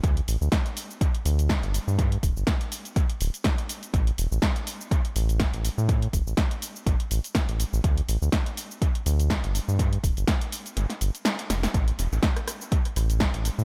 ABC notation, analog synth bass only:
X:1
M:4/4
L:1/16
Q:"Swing 16ths" 1/4=123
K:Gmix
V:1 name="Analog synth bass" clef=bass
D,, z A,,, D,, z6 D,,3 G,,, z G,,- | G,,2 D,,, G,,, z6 D,,, z4 z | A,,, z E,,, A,,, z6 A,,,3 A,,, z A,,- | A,,2 E,,, A,,, z4 A,,, z A,,, z2 A,,, z A,,, |
D,, z A,,, D,, z6 D,,3 G,,, z G,,- | G,,2 D,,, G,,, z4 G,,, z G,,, z3 F,,, z | A,,, z E,,, A,,, z6 A,,,3 A,,, z A,, |]